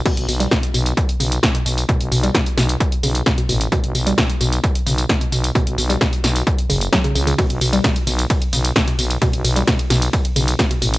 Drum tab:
CC |x---------------|----------------|----------------|----------------|
RD |----------------|----------------|----------------|----------------|
HH |xxoxxxoxxxoxxxox|xxoxxxoxxxoxxxox|xxoxxxoxxxoxxxox|xxoxxxoxxxoxxxox|
TB |x-xxx-xxx-xxx-xx|x-xxx-xxx-xxx-xx|x-xxx-xxx-xxx-xx|x-xxx-xxx-xxx-xx|
SD |----o-------o---|----o-o-----o---|----o-------o---|----o-o-----o---|
BD |o---o---o---o---|o---o---o---o---|o---o---o---o---|o---o---o---o---|

CC |----------------|----------------|
RD |xxxxxxxxxxxxxxxx|xxxxxxxxxxxxxxxx|
HH |xxoxxxoxxxoxxxox|xxoxxxoxxxoxxxox|
TB |x-xxx-xxx-xxx-xx|x-xxx-xxx-xxx-xx|
SD |----o-------o---|----o-o-----o---|
BD |o---o---o---o---|o---o---o---o---|